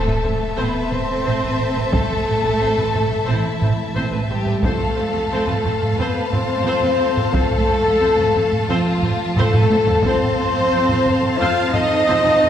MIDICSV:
0, 0, Header, 1, 10, 480
1, 0, Start_track
1, 0, Tempo, 675676
1, 1374, Time_signature, 4, 2, 24, 8
1, 8876, End_track
2, 0, Start_track
2, 0, Title_t, "Flute section"
2, 0, Program_c, 0, 73
2, 0, Note_on_c, 0, 81, 75
2, 412, Note_on_c, 0, 83, 72
2, 414, Note_off_c, 0, 81, 0
2, 646, Note_on_c, 0, 84, 90
2, 648, Note_off_c, 0, 83, 0
2, 1356, Note_off_c, 0, 84, 0
2, 1365, Note_on_c, 0, 81, 88
2, 2330, Note_off_c, 0, 81, 0
2, 2331, Note_on_c, 0, 76, 72
2, 2803, Note_off_c, 0, 76, 0
2, 3049, Note_on_c, 0, 79, 75
2, 3274, Note_off_c, 0, 79, 0
2, 3299, Note_on_c, 0, 81, 75
2, 4237, Note_off_c, 0, 81, 0
2, 4258, Note_on_c, 0, 83, 73
2, 4491, Note_off_c, 0, 83, 0
2, 4492, Note_on_c, 0, 84, 93
2, 5198, Note_off_c, 0, 84, 0
2, 5207, Note_on_c, 0, 81, 103
2, 5952, Note_off_c, 0, 81, 0
2, 6161, Note_on_c, 0, 77, 86
2, 6637, Note_off_c, 0, 77, 0
2, 6646, Note_on_c, 0, 81, 92
2, 7129, Note_off_c, 0, 81, 0
2, 7136, Note_on_c, 0, 84, 110
2, 8074, Note_off_c, 0, 84, 0
2, 8098, Note_on_c, 0, 89, 94
2, 8328, Note_on_c, 0, 87, 112
2, 8334, Note_off_c, 0, 89, 0
2, 8876, Note_off_c, 0, 87, 0
2, 8876, End_track
3, 0, Start_track
3, 0, Title_t, "Violin section"
3, 0, Program_c, 1, 48
3, 0, Note_on_c, 1, 76, 67
3, 0, Note_on_c, 1, 81, 73
3, 3262, Note_off_c, 1, 76, 0
3, 3263, Note_off_c, 1, 81, 0
3, 3291, Note_on_c, 1, 81, 78
3, 3293, Note_on_c, 1, 77, 73
3, 7102, Note_off_c, 1, 81, 0
3, 7103, Note_off_c, 1, 77, 0
3, 7139, Note_on_c, 1, 81, 87
3, 7141, Note_on_c, 1, 77, 89
3, 8876, Note_off_c, 1, 77, 0
3, 8876, Note_off_c, 1, 81, 0
3, 8876, End_track
4, 0, Start_track
4, 0, Title_t, "French horn section"
4, 0, Program_c, 2, 60
4, 0, Note_on_c, 2, 69, 90
4, 404, Note_on_c, 2, 71, 86
4, 415, Note_off_c, 2, 69, 0
4, 647, Note_on_c, 2, 72, 101
4, 649, Note_off_c, 2, 71, 0
4, 1359, Note_on_c, 2, 69, 110
4, 1371, Note_off_c, 2, 72, 0
4, 2327, Note_off_c, 2, 69, 0
4, 2337, Note_on_c, 2, 64, 84
4, 2806, Note_off_c, 2, 64, 0
4, 3056, Note_on_c, 2, 67, 81
4, 3278, Note_off_c, 2, 67, 0
4, 3293, Note_on_c, 2, 69, 96
4, 4253, Note_off_c, 2, 69, 0
4, 4269, Note_on_c, 2, 71, 103
4, 4496, Note_on_c, 2, 72, 114
4, 4501, Note_off_c, 2, 71, 0
4, 5200, Note_off_c, 2, 72, 0
4, 5211, Note_on_c, 2, 69, 125
4, 6170, Note_on_c, 2, 65, 102
4, 6171, Note_off_c, 2, 69, 0
4, 6641, Note_off_c, 2, 65, 0
4, 6652, Note_on_c, 2, 69, 117
4, 7132, Note_off_c, 2, 69, 0
4, 7140, Note_on_c, 2, 72, 127
4, 8087, Note_on_c, 2, 77, 119
4, 8095, Note_off_c, 2, 72, 0
4, 8329, Note_off_c, 2, 77, 0
4, 8338, Note_on_c, 2, 75, 127
4, 8876, Note_off_c, 2, 75, 0
4, 8876, End_track
5, 0, Start_track
5, 0, Title_t, "String section"
5, 0, Program_c, 3, 48
5, 0, Note_on_c, 3, 57, 74
5, 0, Note_on_c, 3, 69, 72
5, 0, Note_on_c, 3, 76, 71
5, 3264, Note_off_c, 3, 57, 0
5, 3264, Note_off_c, 3, 69, 0
5, 3264, Note_off_c, 3, 76, 0
5, 3287, Note_on_c, 3, 77, 76
5, 3288, Note_on_c, 3, 57, 80
5, 3290, Note_on_c, 3, 69, 76
5, 7101, Note_off_c, 3, 57, 0
5, 7102, Note_off_c, 3, 69, 0
5, 7129, Note_off_c, 3, 77, 0
5, 7131, Note_on_c, 3, 69, 87
5, 7133, Note_on_c, 3, 60, 91
5, 7136, Note_on_c, 3, 72, 94
5, 7136, Note_on_c, 3, 77, 90
5, 8876, Note_off_c, 3, 60, 0
5, 8876, Note_off_c, 3, 69, 0
5, 8876, Note_off_c, 3, 72, 0
5, 8876, Note_off_c, 3, 77, 0
5, 8876, End_track
6, 0, Start_track
6, 0, Title_t, "Violin section"
6, 0, Program_c, 4, 48
6, 0, Note_on_c, 4, 69, 74
6, 404, Note_on_c, 4, 71, 78
6, 414, Note_off_c, 4, 69, 0
6, 644, Note_off_c, 4, 71, 0
6, 656, Note_on_c, 4, 72, 79
6, 1375, Note_off_c, 4, 72, 0
6, 1375, Note_on_c, 4, 69, 95
6, 2315, Note_off_c, 4, 69, 0
6, 2337, Note_on_c, 4, 64, 72
6, 2815, Note_off_c, 4, 64, 0
6, 3058, Note_on_c, 4, 67, 76
6, 3279, Note_off_c, 4, 67, 0
6, 3297, Note_on_c, 4, 69, 78
6, 4236, Note_off_c, 4, 69, 0
6, 4259, Note_on_c, 4, 71, 79
6, 4496, Note_off_c, 4, 71, 0
6, 4497, Note_on_c, 4, 72, 93
6, 5200, Note_off_c, 4, 72, 0
6, 5209, Note_on_c, 4, 69, 97
6, 6171, Note_off_c, 4, 69, 0
6, 6171, Note_on_c, 4, 65, 89
6, 6652, Note_off_c, 4, 65, 0
6, 6659, Note_on_c, 4, 69, 100
6, 7129, Note_on_c, 4, 72, 109
6, 7135, Note_off_c, 4, 69, 0
6, 8085, Note_on_c, 4, 77, 100
6, 8089, Note_off_c, 4, 72, 0
6, 8323, Note_off_c, 4, 77, 0
6, 8330, Note_on_c, 4, 75, 108
6, 8876, Note_off_c, 4, 75, 0
6, 8876, End_track
7, 0, Start_track
7, 0, Title_t, "Viola section"
7, 0, Program_c, 5, 48
7, 48, Note_on_c, 5, 71, 59
7, 49, Note_on_c, 5, 60, 55
7, 97, Note_off_c, 5, 71, 0
7, 98, Note_off_c, 5, 60, 0
7, 168, Note_on_c, 5, 60, 54
7, 169, Note_on_c, 5, 72, 52
7, 217, Note_off_c, 5, 60, 0
7, 218, Note_off_c, 5, 72, 0
7, 399, Note_on_c, 5, 72, 81
7, 402, Note_on_c, 5, 60, 79
7, 517, Note_off_c, 5, 72, 0
7, 519, Note_off_c, 5, 60, 0
7, 641, Note_on_c, 5, 72, 58
7, 643, Note_on_c, 5, 60, 60
7, 692, Note_off_c, 5, 72, 0
7, 693, Note_off_c, 5, 60, 0
7, 888, Note_on_c, 5, 72, 67
7, 890, Note_on_c, 5, 60, 76
7, 995, Note_off_c, 5, 60, 0
7, 1002, Note_off_c, 5, 72, 0
7, 1004, Note_on_c, 5, 60, 68
7, 1009, Note_on_c, 5, 71, 67
7, 1054, Note_off_c, 5, 60, 0
7, 1058, Note_off_c, 5, 71, 0
7, 1129, Note_on_c, 5, 72, 60
7, 1132, Note_on_c, 5, 60, 53
7, 1178, Note_off_c, 5, 72, 0
7, 1180, Note_off_c, 5, 60, 0
7, 1249, Note_on_c, 5, 71, 67
7, 1250, Note_on_c, 5, 60, 58
7, 1298, Note_off_c, 5, 60, 0
7, 1298, Note_off_c, 5, 71, 0
7, 1361, Note_on_c, 5, 60, 70
7, 1364, Note_on_c, 5, 72, 66
7, 1478, Note_off_c, 5, 60, 0
7, 1480, Note_off_c, 5, 72, 0
7, 1604, Note_on_c, 5, 60, 51
7, 1606, Note_on_c, 5, 72, 53
7, 1654, Note_off_c, 5, 60, 0
7, 1656, Note_off_c, 5, 72, 0
7, 1726, Note_on_c, 5, 71, 53
7, 1728, Note_on_c, 5, 60, 45
7, 1775, Note_off_c, 5, 71, 0
7, 1777, Note_off_c, 5, 60, 0
7, 1848, Note_on_c, 5, 72, 85
7, 1852, Note_on_c, 5, 60, 69
7, 1962, Note_off_c, 5, 72, 0
7, 1964, Note_off_c, 5, 60, 0
7, 1975, Note_on_c, 5, 60, 57
7, 1976, Note_on_c, 5, 71, 56
7, 2023, Note_off_c, 5, 60, 0
7, 2024, Note_off_c, 5, 71, 0
7, 2089, Note_on_c, 5, 60, 57
7, 2089, Note_on_c, 5, 72, 61
7, 2138, Note_off_c, 5, 60, 0
7, 2138, Note_off_c, 5, 72, 0
7, 2324, Note_on_c, 5, 60, 81
7, 2324, Note_on_c, 5, 72, 76
7, 2440, Note_off_c, 5, 60, 0
7, 2440, Note_off_c, 5, 72, 0
7, 2570, Note_on_c, 5, 60, 59
7, 2571, Note_on_c, 5, 72, 66
7, 2619, Note_off_c, 5, 60, 0
7, 2619, Note_off_c, 5, 72, 0
7, 2807, Note_on_c, 5, 60, 73
7, 2807, Note_on_c, 5, 72, 78
7, 2920, Note_off_c, 5, 60, 0
7, 2922, Note_off_c, 5, 72, 0
7, 2926, Note_on_c, 5, 71, 72
7, 2928, Note_on_c, 5, 60, 64
7, 2976, Note_off_c, 5, 71, 0
7, 2977, Note_off_c, 5, 60, 0
7, 3050, Note_on_c, 5, 60, 57
7, 3052, Note_on_c, 5, 72, 54
7, 3098, Note_off_c, 5, 60, 0
7, 3100, Note_off_c, 5, 72, 0
7, 3159, Note_on_c, 5, 71, 61
7, 3164, Note_on_c, 5, 60, 59
7, 3210, Note_off_c, 5, 71, 0
7, 3214, Note_off_c, 5, 60, 0
7, 3289, Note_on_c, 5, 60, 69
7, 3289, Note_on_c, 5, 72, 69
7, 3403, Note_off_c, 5, 60, 0
7, 3403, Note_off_c, 5, 72, 0
7, 3522, Note_on_c, 5, 72, 56
7, 3526, Note_on_c, 5, 60, 61
7, 3572, Note_off_c, 5, 72, 0
7, 3576, Note_off_c, 5, 60, 0
7, 3647, Note_on_c, 5, 69, 62
7, 3648, Note_on_c, 5, 60, 56
7, 3696, Note_off_c, 5, 69, 0
7, 3697, Note_off_c, 5, 60, 0
7, 3775, Note_on_c, 5, 60, 96
7, 3775, Note_on_c, 5, 72, 90
7, 3884, Note_off_c, 5, 60, 0
7, 3886, Note_off_c, 5, 72, 0
7, 3892, Note_on_c, 5, 60, 63
7, 3892, Note_on_c, 5, 71, 57
7, 3941, Note_off_c, 5, 60, 0
7, 3941, Note_off_c, 5, 71, 0
7, 4016, Note_on_c, 5, 72, 66
7, 4018, Note_on_c, 5, 60, 63
7, 4064, Note_off_c, 5, 72, 0
7, 4065, Note_off_c, 5, 60, 0
7, 4255, Note_on_c, 5, 60, 81
7, 4257, Note_on_c, 5, 72, 87
7, 4366, Note_off_c, 5, 60, 0
7, 4367, Note_off_c, 5, 72, 0
7, 4497, Note_on_c, 5, 60, 61
7, 4497, Note_on_c, 5, 72, 61
7, 4544, Note_off_c, 5, 60, 0
7, 4544, Note_off_c, 5, 72, 0
7, 4735, Note_on_c, 5, 72, 92
7, 4737, Note_on_c, 5, 60, 86
7, 4845, Note_off_c, 5, 60, 0
7, 4845, Note_off_c, 5, 72, 0
7, 4852, Note_on_c, 5, 71, 70
7, 4853, Note_on_c, 5, 60, 70
7, 4900, Note_off_c, 5, 71, 0
7, 4901, Note_off_c, 5, 60, 0
7, 4965, Note_on_c, 5, 72, 76
7, 4966, Note_on_c, 5, 60, 69
7, 5014, Note_off_c, 5, 72, 0
7, 5015, Note_off_c, 5, 60, 0
7, 5094, Note_on_c, 5, 60, 68
7, 5095, Note_on_c, 5, 69, 67
7, 5142, Note_off_c, 5, 60, 0
7, 5143, Note_off_c, 5, 69, 0
7, 5207, Note_on_c, 5, 60, 74
7, 5207, Note_on_c, 5, 72, 81
7, 5321, Note_off_c, 5, 72, 0
7, 5322, Note_off_c, 5, 60, 0
7, 5451, Note_on_c, 5, 60, 52
7, 5453, Note_on_c, 5, 72, 62
7, 5499, Note_off_c, 5, 60, 0
7, 5501, Note_off_c, 5, 72, 0
7, 5573, Note_on_c, 5, 60, 65
7, 5573, Note_on_c, 5, 69, 59
7, 5621, Note_off_c, 5, 60, 0
7, 5621, Note_off_c, 5, 69, 0
7, 5686, Note_on_c, 5, 60, 76
7, 5688, Note_on_c, 5, 72, 82
7, 5801, Note_off_c, 5, 60, 0
7, 5802, Note_off_c, 5, 72, 0
7, 5814, Note_on_c, 5, 71, 67
7, 5817, Note_on_c, 5, 60, 71
7, 5862, Note_off_c, 5, 71, 0
7, 5864, Note_off_c, 5, 60, 0
7, 5931, Note_on_c, 5, 60, 68
7, 5933, Note_on_c, 5, 72, 60
7, 5980, Note_off_c, 5, 60, 0
7, 5981, Note_off_c, 5, 72, 0
7, 6178, Note_on_c, 5, 60, 93
7, 6178, Note_on_c, 5, 72, 91
7, 6287, Note_off_c, 5, 60, 0
7, 6287, Note_off_c, 5, 72, 0
7, 6416, Note_on_c, 5, 72, 80
7, 6419, Note_on_c, 5, 60, 73
7, 6463, Note_off_c, 5, 72, 0
7, 6466, Note_off_c, 5, 60, 0
7, 6663, Note_on_c, 5, 60, 95
7, 6665, Note_on_c, 5, 72, 97
7, 6769, Note_off_c, 5, 60, 0
7, 6770, Note_off_c, 5, 72, 0
7, 6779, Note_on_c, 5, 60, 79
7, 6779, Note_on_c, 5, 71, 79
7, 6826, Note_off_c, 5, 60, 0
7, 6826, Note_off_c, 5, 71, 0
7, 6900, Note_on_c, 5, 72, 72
7, 6901, Note_on_c, 5, 60, 79
7, 6946, Note_off_c, 5, 72, 0
7, 6947, Note_off_c, 5, 60, 0
7, 7022, Note_on_c, 5, 60, 71
7, 7022, Note_on_c, 5, 69, 73
7, 7068, Note_off_c, 5, 60, 0
7, 7068, Note_off_c, 5, 69, 0
7, 7148, Note_on_c, 5, 60, 86
7, 7148, Note_on_c, 5, 72, 91
7, 7252, Note_off_c, 5, 60, 0
7, 7252, Note_off_c, 5, 72, 0
7, 7389, Note_on_c, 5, 60, 63
7, 7390, Note_on_c, 5, 72, 69
7, 7434, Note_off_c, 5, 60, 0
7, 7434, Note_off_c, 5, 72, 0
7, 7509, Note_on_c, 5, 60, 62
7, 7513, Note_on_c, 5, 69, 72
7, 7554, Note_off_c, 5, 60, 0
7, 7556, Note_off_c, 5, 69, 0
7, 7627, Note_on_c, 5, 60, 98
7, 7628, Note_on_c, 5, 72, 95
7, 7731, Note_off_c, 5, 60, 0
7, 7732, Note_off_c, 5, 72, 0
7, 7751, Note_on_c, 5, 60, 64
7, 7751, Note_on_c, 5, 71, 79
7, 7795, Note_off_c, 5, 60, 0
7, 7795, Note_off_c, 5, 71, 0
7, 7861, Note_on_c, 5, 72, 72
7, 7865, Note_on_c, 5, 60, 77
7, 7907, Note_off_c, 5, 72, 0
7, 7910, Note_off_c, 5, 60, 0
7, 8102, Note_on_c, 5, 60, 90
7, 8107, Note_on_c, 5, 72, 98
7, 8209, Note_off_c, 5, 60, 0
7, 8211, Note_off_c, 5, 72, 0
7, 8342, Note_on_c, 5, 60, 76
7, 8343, Note_on_c, 5, 72, 80
7, 8388, Note_off_c, 5, 60, 0
7, 8388, Note_off_c, 5, 72, 0
7, 8575, Note_on_c, 5, 60, 94
7, 8577, Note_on_c, 5, 72, 93
7, 8684, Note_off_c, 5, 60, 0
7, 8685, Note_off_c, 5, 72, 0
7, 8698, Note_on_c, 5, 60, 81
7, 8700, Note_on_c, 5, 71, 79
7, 8745, Note_off_c, 5, 60, 0
7, 8746, Note_off_c, 5, 71, 0
7, 8819, Note_on_c, 5, 60, 69
7, 8821, Note_on_c, 5, 72, 74
7, 8866, Note_off_c, 5, 60, 0
7, 8867, Note_off_c, 5, 72, 0
7, 8876, End_track
8, 0, Start_track
8, 0, Title_t, "Cello section"
8, 0, Program_c, 6, 48
8, 0, Note_on_c, 6, 57, 70
8, 394, Note_off_c, 6, 57, 0
8, 411, Note_on_c, 6, 59, 77
8, 650, Note_on_c, 6, 60, 80
8, 652, Note_off_c, 6, 59, 0
8, 1371, Note_on_c, 6, 57, 89
8, 1372, Note_off_c, 6, 60, 0
8, 2313, Note_off_c, 6, 57, 0
8, 2331, Note_on_c, 6, 52, 68
8, 2803, Note_off_c, 6, 52, 0
8, 3054, Note_on_c, 6, 55, 69
8, 3277, Note_off_c, 6, 55, 0
8, 3291, Note_on_c, 6, 57, 75
8, 4250, Note_on_c, 6, 59, 83
8, 4252, Note_off_c, 6, 57, 0
8, 4489, Note_on_c, 6, 60, 86
8, 4492, Note_off_c, 6, 59, 0
8, 5197, Note_off_c, 6, 60, 0
8, 5208, Note_on_c, 6, 57, 89
8, 6151, Note_off_c, 6, 57, 0
8, 6172, Note_on_c, 6, 53, 88
8, 6643, Note_off_c, 6, 53, 0
8, 6652, Note_on_c, 6, 57, 102
8, 7132, Note_off_c, 6, 57, 0
8, 7135, Note_on_c, 6, 60, 100
8, 8073, Note_off_c, 6, 60, 0
8, 8094, Note_on_c, 6, 65, 101
8, 8331, Note_on_c, 6, 63, 100
8, 8332, Note_off_c, 6, 65, 0
8, 8876, Note_off_c, 6, 63, 0
8, 8876, End_track
9, 0, Start_track
9, 0, Title_t, "Double bass section"
9, 0, Program_c, 7, 48
9, 53, Note_on_c, 7, 33, 55
9, 101, Note_off_c, 7, 33, 0
9, 173, Note_on_c, 7, 33, 50
9, 221, Note_off_c, 7, 33, 0
9, 408, Note_on_c, 7, 33, 76
9, 457, Note_off_c, 7, 33, 0
9, 647, Note_on_c, 7, 33, 53
9, 696, Note_off_c, 7, 33, 0
9, 893, Note_on_c, 7, 33, 73
9, 941, Note_off_c, 7, 33, 0
9, 1012, Note_on_c, 7, 33, 58
9, 1060, Note_off_c, 7, 33, 0
9, 1134, Note_on_c, 7, 33, 53
9, 1182, Note_off_c, 7, 33, 0
9, 1255, Note_on_c, 7, 33, 52
9, 1303, Note_off_c, 7, 33, 0
9, 1373, Note_on_c, 7, 33, 80
9, 1421, Note_off_c, 7, 33, 0
9, 1617, Note_on_c, 7, 33, 60
9, 1664, Note_off_c, 7, 33, 0
9, 1730, Note_on_c, 7, 33, 58
9, 1779, Note_off_c, 7, 33, 0
9, 1858, Note_on_c, 7, 33, 78
9, 1905, Note_off_c, 7, 33, 0
9, 1975, Note_on_c, 7, 33, 54
9, 2023, Note_off_c, 7, 33, 0
9, 2093, Note_on_c, 7, 33, 55
9, 2141, Note_off_c, 7, 33, 0
9, 2330, Note_on_c, 7, 33, 80
9, 2379, Note_off_c, 7, 33, 0
9, 2568, Note_on_c, 7, 33, 59
9, 2618, Note_off_c, 7, 33, 0
9, 2809, Note_on_c, 7, 33, 80
9, 2858, Note_off_c, 7, 33, 0
9, 2924, Note_on_c, 7, 33, 59
9, 2974, Note_off_c, 7, 33, 0
9, 3058, Note_on_c, 7, 33, 56
9, 3105, Note_off_c, 7, 33, 0
9, 3175, Note_on_c, 7, 33, 52
9, 3223, Note_off_c, 7, 33, 0
9, 3290, Note_on_c, 7, 41, 81
9, 3339, Note_off_c, 7, 41, 0
9, 3534, Note_on_c, 7, 41, 58
9, 3582, Note_off_c, 7, 41, 0
9, 3652, Note_on_c, 7, 41, 60
9, 3700, Note_off_c, 7, 41, 0
9, 3768, Note_on_c, 7, 41, 89
9, 3817, Note_off_c, 7, 41, 0
9, 3887, Note_on_c, 7, 41, 59
9, 3936, Note_off_c, 7, 41, 0
9, 4010, Note_on_c, 7, 41, 53
9, 4059, Note_off_c, 7, 41, 0
9, 4241, Note_on_c, 7, 41, 83
9, 4292, Note_off_c, 7, 41, 0
9, 4487, Note_on_c, 7, 41, 64
9, 4536, Note_off_c, 7, 41, 0
9, 4714, Note_on_c, 7, 41, 91
9, 4766, Note_off_c, 7, 41, 0
9, 4839, Note_on_c, 7, 41, 64
9, 4890, Note_off_c, 7, 41, 0
9, 4964, Note_on_c, 7, 41, 65
9, 5014, Note_off_c, 7, 41, 0
9, 5080, Note_on_c, 7, 41, 59
9, 5131, Note_off_c, 7, 41, 0
9, 5198, Note_on_c, 7, 41, 92
9, 5249, Note_off_c, 7, 41, 0
9, 5446, Note_on_c, 7, 41, 64
9, 5495, Note_off_c, 7, 41, 0
9, 5565, Note_on_c, 7, 41, 69
9, 5615, Note_off_c, 7, 41, 0
9, 5681, Note_on_c, 7, 41, 97
9, 5731, Note_off_c, 7, 41, 0
9, 5810, Note_on_c, 7, 41, 61
9, 5859, Note_off_c, 7, 41, 0
9, 5931, Note_on_c, 7, 41, 65
9, 5979, Note_off_c, 7, 41, 0
9, 6171, Note_on_c, 7, 41, 89
9, 6220, Note_off_c, 7, 41, 0
9, 6411, Note_on_c, 7, 41, 74
9, 6459, Note_off_c, 7, 41, 0
9, 6653, Note_on_c, 7, 41, 97
9, 6700, Note_off_c, 7, 41, 0
9, 6773, Note_on_c, 7, 41, 75
9, 6821, Note_off_c, 7, 41, 0
9, 6894, Note_on_c, 7, 41, 66
9, 6941, Note_off_c, 7, 41, 0
9, 7018, Note_on_c, 7, 41, 65
9, 7065, Note_off_c, 7, 41, 0
9, 7132, Note_on_c, 7, 41, 90
9, 7180, Note_off_c, 7, 41, 0
9, 7373, Note_on_c, 7, 41, 67
9, 7421, Note_off_c, 7, 41, 0
9, 7493, Note_on_c, 7, 41, 80
9, 7540, Note_off_c, 7, 41, 0
9, 7616, Note_on_c, 7, 41, 109
9, 7663, Note_off_c, 7, 41, 0
9, 7739, Note_on_c, 7, 41, 71
9, 7785, Note_off_c, 7, 41, 0
9, 7863, Note_on_c, 7, 41, 70
9, 7909, Note_off_c, 7, 41, 0
9, 8099, Note_on_c, 7, 41, 94
9, 8145, Note_off_c, 7, 41, 0
9, 8342, Note_on_c, 7, 41, 72
9, 8387, Note_off_c, 7, 41, 0
9, 8583, Note_on_c, 7, 41, 104
9, 8629, Note_off_c, 7, 41, 0
9, 8700, Note_on_c, 7, 41, 78
9, 8746, Note_off_c, 7, 41, 0
9, 8825, Note_on_c, 7, 41, 76
9, 8870, Note_off_c, 7, 41, 0
9, 8876, End_track
10, 0, Start_track
10, 0, Title_t, "Taiko and cinematic ensemble drums"
10, 52, Note_on_c, 9, 45, 47
10, 123, Note_off_c, 9, 45, 0
10, 172, Note_on_c, 9, 45, 57
10, 243, Note_off_c, 9, 45, 0
10, 291, Note_on_c, 9, 45, 45
10, 362, Note_off_c, 9, 45, 0
10, 653, Note_on_c, 9, 45, 60
10, 725, Note_off_c, 9, 45, 0
10, 1254, Note_on_c, 9, 45, 45
10, 1325, Note_off_c, 9, 45, 0
10, 1374, Note_on_c, 9, 41, 105
10, 1446, Note_off_c, 9, 41, 0
10, 1497, Note_on_c, 9, 45, 51
10, 1568, Note_off_c, 9, 45, 0
10, 1973, Note_on_c, 9, 45, 46
10, 2044, Note_off_c, 9, 45, 0
10, 2096, Note_on_c, 9, 45, 63
10, 2167, Note_off_c, 9, 45, 0
10, 2214, Note_on_c, 9, 45, 52
10, 2285, Note_off_c, 9, 45, 0
10, 2571, Note_on_c, 9, 45, 59
10, 2642, Note_off_c, 9, 45, 0
10, 3172, Note_on_c, 9, 45, 46
10, 3243, Note_off_c, 9, 45, 0
10, 3289, Note_on_c, 9, 41, 102
10, 3360, Note_off_c, 9, 41, 0
10, 3412, Note_on_c, 9, 45, 50
10, 3483, Note_off_c, 9, 45, 0
10, 3891, Note_on_c, 9, 45, 49
10, 3962, Note_off_c, 9, 45, 0
10, 4016, Note_on_c, 9, 45, 61
10, 4087, Note_off_c, 9, 45, 0
10, 4135, Note_on_c, 9, 45, 51
10, 4206, Note_off_c, 9, 45, 0
10, 4495, Note_on_c, 9, 45, 61
10, 4566, Note_off_c, 9, 45, 0
10, 5095, Note_on_c, 9, 45, 53
10, 5166, Note_off_c, 9, 45, 0
10, 5212, Note_on_c, 9, 41, 100
10, 5283, Note_off_c, 9, 41, 0
10, 5331, Note_on_c, 9, 45, 49
10, 5402, Note_off_c, 9, 45, 0
10, 5812, Note_on_c, 9, 45, 51
10, 5884, Note_off_c, 9, 45, 0
10, 5935, Note_on_c, 9, 45, 64
10, 6006, Note_off_c, 9, 45, 0
10, 6055, Note_on_c, 9, 45, 51
10, 6126, Note_off_c, 9, 45, 0
10, 6414, Note_on_c, 9, 45, 58
10, 6485, Note_off_c, 9, 45, 0
10, 6653, Note_on_c, 9, 45, 92
10, 6724, Note_off_c, 9, 45, 0
10, 6773, Note_on_c, 9, 45, 100
10, 6844, Note_off_c, 9, 45, 0
10, 6893, Note_on_c, 9, 48, 91
10, 6964, Note_off_c, 9, 48, 0
10, 7012, Note_on_c, 9, 43, 93
10, 7083, Note_off_c, 9, 43, 0
10, 7131, Note_on_c, 9, 41, 107
10, 7202, Note_off_c, 9, 41, 0
10, 7256, Note_on_c, 9, 45, 55
10, 7327, Note_off_c, 9, 45, 0
10, 7737, Note_on_c, 9, 45, 49
10, 7808, Note_off_c, 9, 45, 0
10, 7856, Note_on_c, 9, 45, 63
10, 7927, Note_off_c, 9, 45, 0
10, 7977, Note_on_c, 9, 45, 54
10, 8048, Note_off_c, 9, 45, 0
10, 8336, Note_on_c, 9, 45, 64
10, 8407, Note_off_c, 9, 45, 0
10, 8876, End_track
0, 0, End_of_file